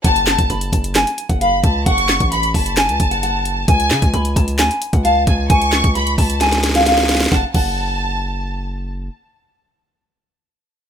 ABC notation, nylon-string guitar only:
X:1
M:4/4
L:1/16
Q:1/4=132
K:F#m
V:1 name="Nylon-string guitar"
f4 b2 a2 g3 f ^e2 z2 | f4 b2 a2 g3 f f4 | g4 b2 a2 g3 f ^e2 z2 | g4 b2 a2 g3 ^e e4 |
f2 f8- f2 z4 | z16 |]